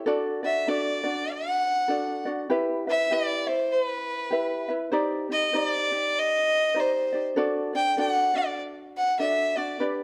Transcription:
0.06 D4 F#4 A4 D5
0.43 D4 F#4 D5 E5
0.67 D4 F#4 A4 D5
1.04 D4 F#4 D5
1.32 F#5
1.88 D4 F#4 A4 D5
2.25 D4 F#4 D5
2.50 E4 G4 B4 E5
2.87 E4 B4 E5
3.11 E4 G4 B4 D5 E5
3.47 E4 C5 E5
3.72 C5
3.83 B4
4.30 E4 G4 B4 E5
4.68 E4 B4 E5
4.92 D#4 G4 C5 D5
5.30 D#4 G4 D#5
5.53 D#4 G4 C5 D5
5.92 D#4 G4
6.19 D#5
6.74 D#4 G4 C5 D5
6.79 C5
7.12 D#4 G4 D5
7.36 D4 F#4 A4 D5
7.73 D4 D5 G5
7.97 D4 F#4 A4 D5 F#5
8.34 D4 F#4 D5
8.97 F#5
9.19 D4 F#4 A4 D5 E5
9.55 D4 F#4 D5
9.80 D4 G4 B4 D5

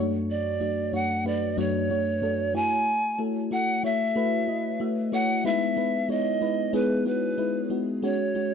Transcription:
Already playing: F#2 A3 D4 F#4 C#5
0.31 D5
0.60 F#2 A3 D4 F#4 D5
0.93 F#2 A3 D4 F#4 C#5 F#5
1.25 F#2 A3 D4 F#4 B4 D5
1.57 F#2 A3 D4 F#4 C#5
1.90 F#2 A3 D4 F#4 C#5
2.22 F#2 A3 D4 F#4 A4
2.54 A3 E4 F#4 C#5 G#5
3.19 A3 E4 F#4 A4
3.51 A3 E4 F#4 A4 F#5
3.83 A3 E4 F#4 C#5 E5
4.16 A3 E4 F#4 B4
4.48 A3 E4 F#4 D#5
4.80 A3 E4 F#4 E5
5.12 A3 E4 F#4 C#5 F#5
5.44 G#3 B3 D#4 E4 B4 E5
5.77 G#3 B3 D#4 E4 B4
6.09 G#3 B3 D#4 E4 C#5 D#5
6.41 G#3 B3 D#4 E4 B4
6.73 G#3 B3 D#4 E4 G#4 B4
7.05 G#3 B3 D#4 E4 F#4 B4
7.38 G#3 B3 D#4 E4 B4
7.70 G#3 B3 D#4 E4 F#4
8.03 G#3 C#4 F#4 C#5
8.35 G#3 C#4 F#4

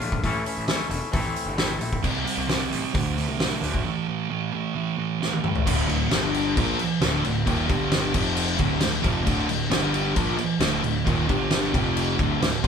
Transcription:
Already playing: A2
0.00 A#1 D3 A3 F4, open hi-hat
0.12 kick
0.22 A1 A2 E3 A3 C#4 E4 A4, kick, open hi-hat
0.45 A3 C#4 E4 A4, open hi-hat
0.58 A1
0.68 A3 C#4 E4 A4, snare, open hi-hat
0.89 E1 A3 C#4 E4 A4, open hi-hat
1.11 A1 A2 E3 A3 C4 E4 A4, kick, open hi-hat
1.36 open hi-hat
1.46 G1
1.56 A3 C4 E4 A4, snare, open hi-hat
1.78 A#1 A3 C4 E4 A4, open hi-hat
1.93 kick
2.02 C2 C3 G3 C4, kick, crash
2.24 C3 G3 C4, open hi-hat
2.38 C2
2.47 C3 G3 C4, snare, open hi-hat
2.70 A1 C3 G3 C4, open hi-hat
2.93 D2 A2 D3, kick, open hi-hat
3.16 D2 A2 D3, open hi-hat
3.29 C2
3.37 D2 A2 D3, snare, open hi-hat
3.61 D2 A2 D3, open hi-hat
3.74 kick
3.84 A2 E3 A3
4.07 A2 E3 A3
4.29 A2 E3 A3
4.53 A2 E3 A3
4.74 A2 E3 A3
4.97 A2 E3 A3
5.19 A2 E3 A3, snare
5.33 high tom
5.43 A2 E3 A3, mid tom
5.55 floor tom
5.66 D1 D2 A2 D3, kick, crash
5.88 D1 D2 A2, crash
6.10 G1 G2 D3 G3, snare, crash
6.34 crash
6.56 A#1 A#2 F3 A#3, kick, crash
6.78 muted distorted electric guitar stroke, muted picked electric bass stroke, crash
7.00 D1 D2 A2 D3, snare, crash
7.24 D1 D2 A2, crash
7.46 D#1 D#2 A#2 D#3, kick, crash
7.69 G1 G2 D3 G3, kick, crash
7.92 snare, crash
8.14 F1 F2 C3 F3, kick, crash
8.37 crash
8.58 D1 D2 A2 D3, kick, crash
8.81 D1 D2 A2, snare, crash
9.02 F1 F2 C3 F3, kick, crash
9.24 D1 D2 A2 D3, kick, crash
9.49 D1 D2 A2, crash
9.70 G1 G2 D3 G3, snare, crash
9.94 crash
10.15 A#1 A#2 F3 A#3, kick, crash
10.38 muted picked electric bass stroke, muted distorted electric guitar stroke, crash
10.59 D1 D2 A2 D3, snare, crash
10.82 D1 D2 A2, crash
11.05 D#1 D#2 A#2 D#3, kick, crash
11.28 G1 G2 D3 G3, kick, crash
11.51 snare, crash
11.74 F1 F2 C3 F3, kick, crash
11.97 crash
12.18 D1 D2 A2 D3, kick, crash
12.40 D1 D2 A2, snare, crash
12.63 F1 F2 C3 F3, kick, crash

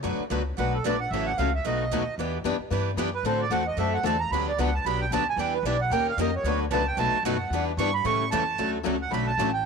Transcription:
0.03 F#2 D3 F#3 A3 B3 D4 F#4 B4
0.19 muted upright bass stroke
0.30 C#2 D3 F#3 A3 B3 D4 F#4 B4
0.57 B1 D3 F#3 A3 B3 D4 F#4 B4 F#5
0.74 A4
0.84 A#1 D3 F#3 A3 B3 D4 F#4 B4 D5
1.00 F#5
1.10 A1 C#3 E3 F#3 A3 C#4 E4 F#4 A4 E5
1.27 F#5
1.38 C#2 C#3 E3 F#3 A3 C#4 E4 F#4 A4 F5
1.55 E5
1.65 B1 B2 F#3 A3 D#4 F#4 B4 D#5
1.91 D#2 B2 F#3 A3 D#4 F#4 B4
2.18 E2 E3 B3 D4 G4 B4
2.44 F#2 E3 B3 D4 G4 B4
2.59 muted upright bass stroke
2.71 G2 E3 B3 D4 G4 B4
2.97 F#2 E3 B3 D4 G4 B4
3.14 B4
3.23 A2 D3 A3 C4 F#4 A4 C5
3.42 D5
3.50 E2 D3 A3 C4 F#4 A4 F#5
3.67 D#5
3.77 F#2 D3 A3 C4 F#4 A4 E5
3.94 F#5
4.03 E2 D3 A3 C4 F#4 A4 A5
4.20 A#5
4.31 D2 D3 F#3 B3 D4 G4 B5
4.49 D5
4.58 C#2 D3 F#3 B3 D4 G4 F#5
4.74 A5
4.85 B1 D3 F#3 B3 D4 G4 B5
5.01 G5
5.11 D2 D3 F#3 B3 D4 G4 A5
5.29 G#5
5.37 E2 E3 G3 B3 D4 E4 G4 B4 G5
5.54 B4
5.63 B1 E3 G3 B3 D4 E4 G4 B4 D5
5.81 F#5
5.90 D#2 D#3 A#3 C#4 G4 A#4 G5
6.09 F5
6.17 F2 D#3 A#3 C#4 G4 A#4 D#5
6.36 C#5
6.43 D2 D3 F#3 A3 B3 D4 F#4 B4
6.71 C#2 D3 F#3 A3 B3 D4 F#4 B4 A5
6.88 G5
6.97 B1 B2 F#3 A3 D#4 F#4 B4 A5
7.23 F#2 B2 F#3 A3 D#4 F#4 F#5
7.27 B4
7.50 E2 E3 G3 B3 D4 E4 G4 B4
7.77 G2 E3 G3 B3 D4 E4 G4 B4 C#6
7.94 B5
8.04 A2 C#3 E3 G3 A3 C#4 E4 G4 A4 C#6
8.31 E2 C#3 E3 G3 A3 C#4 E4 G4 A4 A5
8.58 D2 D3 F#3 A3 C#4 F#4 A4
8.84 C#2 D3 F#3 A3 C#4 F#4 A4
9.02 F#5
9.11 B1 D3 F#3 A3 C#4 F#4 A4 B5
9.27 A5
9.38 A1 D3 F#3 A3 C#4 F#4 A4
9.53 G5

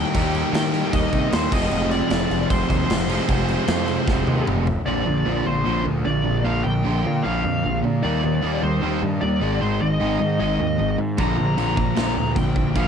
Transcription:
Already playing: D#3 G3 A#3 D#4 G4 G5
0.13 D#2 D#3 G3 A#3 D#4, kick, crash
0.17 G4
0.35 crash
0.53 D#3 G5, snare, crash
0.71 D#3 G3 A#3 D#4, crash
0.93 D#2 D#5, kick, crash
1.11 C3 D#3 A#3 D#4, kick, crash
1.31 D#2 D#3 A#3 D#4 C5, snare, crash
1.51 F1 F2 C3 F3 G#3 C4 G#4 D#5, kick, crash
1.71 F1, crash
1.91 D5, crash
2.10 F1 F2 C3 F3 G#3 C4, snare, crash
2.31 F1, crash
2.49 F1 F2 C3 F3 C5, kick, crash
2.68 D#2 F2 C3 F3, kick, crash
2.90 F1, snare, crash
3.07 F2 C3 F3 G#3 C4, crash
3.12 G#4
3.29 F1, kick, crash
3.48 crash
3.66 F2 C3 F3 G#3 C4, snare, crash
3.88 crash
4.06 F1 F2 C3 F3, kick, snare
4.26 D#2 F2 C3 F3, high tom
4.47 F1, mid tom
4.67 floor tom
4.86 A#1 A#2 D3 F3 A#3 D5
5.05 A#1 A#2 D3
5.25 A#1 A#2 D3 F3
5.45 A#1 A#2 D3 F3 A#3 C5
5.64 A#1 A#2 D3 F3
5.84 D2 A#2 D3
6.04 A#1 A#2 D3 D5
6.24 A#2 D3
6.44 A#1 A#2 D3 F3 A#3 F5
6.64 A#1 A#2 D3 G5
6.83 A#1 A#2 D3 F3
7.03 A#2 D3 F3 A#3
7.23 A#1 A#2 D3 F3 F5
7.43 F2 A#2 D3
7.63 A#1 A#2 D3
7.82 A#2 D3
8.02 D#2 D#3 G3 A#3 D#4 D5
8.22 D#2 D#3 G3
8.41 D#2 D#3 G3 A#3
8.61 D#2 D#3 G3 A#3 D#4 C5
8.80 D#2 D#3 G3 A#3
9.02 G2 D#3 G3
9.21 D#2 D#3 G3 D5
9.40 G#1 G#2 D#3 G#3
9.61 G#1 G#2 D#3 G#3 C5
9.81 G#1 G#2 D#3 D#5
9.99 G#1 G#2 D#3 G#3
10.20 G#2 D#3
10.39 G#1 G#2 D#3 G#3 D#5
10.59 D#2 G#2 D#3
10.78 G#1 G#2 D#3
10.98 G#2 D#3
11.17 A#1 A#2 D3 F3 A#3 A#5, kick, crash
11.38 A#1 A#2 D3
11.58 A#1 A#2 D3 F3, crash
11.76 A#1 A#2 D3 F3 A#3 A#5, kick
11.96 A#1 A#2 D3 F3, snare, crash
12.16 D2 A#2 D3
12.35 A#1 A#2 D3 G5, kick, crash
12.56 A#2 D3, kick
12.74 A#1 A#2 D3 F3 A#3 F5, kick, crash

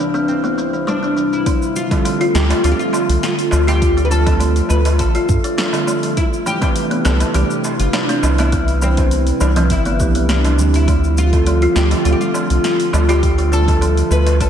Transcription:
Already playing: C2 C3 E3 G3 A3 D4 E4 G4 B4
0.00 cabasa
0.14 C4, cabasa
0.28 C4, cabasa
0.44 B3, cabasa
0.58 C4, cabasa
0.73 E3, cabasa
0.87 G3 D4, cabasa
1.03 B3, cabasa
1.17 E3, cabasa
1.33 E4, cabasa
1.46 D3 F3 A3 F4, kick, open hi-hat, cabasa
1.62 cabasa
1.76 F4, cabasa
1.89 D3 G3 C4 F4, kick, open hi-hat, darbuka tek, cabasa
1.93 A4
2.05 F3, open hi-hat, cabasa
2.21 F4, open hi-hat
2.35 D2 G4, snare, darbuka ka, cabasa
2.50 D4, open hi-hat, darbuka tek, cabasa
2.62 D2 D3 G3 C4 D4 F4 A4, open hi-hat, cabasa
2.72 G4
2.79 F4, cabasa
2.93 F3, darbuka ka, darbuka tek, cabasa
3.09 C2, open hi-hat, cabasa
3.23 F4, snare, open hi-hat, cabasa
3.39 open hi-hat, cabasa
3.51 D2 F3, darbuka tek, cabasa
3.67 F4 G4, open hi-hat, darbuka ka, darbuka tek, cabasa
3.82 kick, open hi-hat, cabasa
3.97 D4, open hi-hat, cabasa
4.05 B4
4.11 D4 A4, cabasa
4.26 D3 G3 C4 F4 A4, kick, open hi-hat, darbuka tek, cabasa
4.40 F3, open hi-hat, cabasa
4.56 open hi-hat, cabasa
4.69 D2 B4, darbuka ka, cabasa
4.85 open hi-hat, darbuka tek, cabasa
4.99 A1 F3 A4, kick, open hi-hat, cabasa
5.15 F4, open hi-hat, darbuka ka, cabasa
5.29 G2, kick, cabasa
5.44 D4, open hi-hat, cabasa
5.58 D4, snare, open hi-hat, cabasa
5.72 D3 G3 C4 F4 A4, open hi-hat, darbuka tek, cabasa
5.87 F3, darbuka ka, cabasa
6.03 open hi-hat, darbuka ka, cabasa
6.17 C3 G3 E4 B4, kick, open hi-hat, cabasa
6.33 cabasa
6.46 E3 G4, cabasa
6.60 E3 A3 C4 D4 G4 B4, kick, open hi-hat, darbuka tek, cabasa
6.76 open hi-hat, cabasa
6.91 B3, open hi-hat
7.05 C2 B3 A4, snare, darbuka ka, cabasa
7.20 open hi-hat, darbuka tek, cabasa
7.33 C2 E3 A3 D4 G4, open hi-hat, cabasa
7.37 B4
7.50 cabasa
7.64 darbuka ka, darbuka tek, cabasa
7.79 G1 F4, open hi-hat, cabasa
7.93 E3 D4, snare, open hi-hat, cabasa
8.09 C4, open hi-hat, cabasa
8.23 C2, darbuka tek, cabasa
8.38 B3 E4, open hi-hat, darbuka ka, darbuka tek, cabasa
8.52 B3, kick, open hi-hat, cabasa
8.68 open hi-hat, cabasa
8.82 E3 C4, cabasa
8.96 E3 A3 D4 G4 B4, kick, open hi-hat, darbuka tek, cabasa
9.11 open hi-hat, cabasa
9.27 open hi-hat, cabasa
9.41 C2 E3 D4, darbuka ka, cabasa
9.56 C4, open hi-hat, darbuka tek, darbuka dum, cabasa
9.70 G1 E4, kick, open hi-hat, cabasa
9.85 B3, open hi-hat, darbuka ka, cabasa
9.99 C2 E3 A3 B3 D4 G4 B4, kick, darbuka dum, cabasa
10.15 B3, open hi-hat, cabasa
10.29 E3 D4, snare, open hi-hat, cabasa
10.45 open hi-hat, darbuka tek, cabasa
10.56 D2 D3 F3 G3 C4 G4, darbuka ka, cabasa
10.73 E4, open hi-hat, darbuka ka, cabasa
10.88 D3 F3 A3 F4, kick, open hi-hat, cabasa
11.04 cabasa
11.18 F4, cabasa
11.30 D3 G3 C4 F4 A4, kick, open hi-hat, darbuka tek, cabasa
11.46 F3, open hi-hat, cabasa
11.62 F4, open hi-hat
11.76 D2 G4, snare, darbuka ka, cabasa
11.91 D4, open hi-hat, darbuka tek, cabasa
12.03 D2 D3 G3 C4 D4 F4, open hi-hat, cabasa
12.07 A4
12.12 G4
12.21 F4, cabasa
12.34 F3, darbuka ka, darbuka tek, cabasa
12.50 C2, open hi-hat, cabasa
12.64 F4, snare, open hi-hat, cabasa
12.80 open hi-hat, cabasa
12.93 D2 F3, darbuka tek, cabasa
13.08 F4 G4, open hi-hat, darbuka ka, darbuka tek, cabasa
13.23 B4, kick, open hi-hat, cabasa
13.38 D4, open hi-hat, cabasa
13.52 D4 A4, cabasa
13.67 D3 G3 C4 F4 A4, kick, open hi-hat, darbuka tek, cabasa
13.81 F3, open hi-hat, cabasa
13.97 open hi-hat, cabasa
14.11 D2 B4, darbuka ka, cabasa
14.26 open hi-hat, darbuka tek, cabasa
14.40 A1 F3 A4, kick, open hi-hat, cabasa

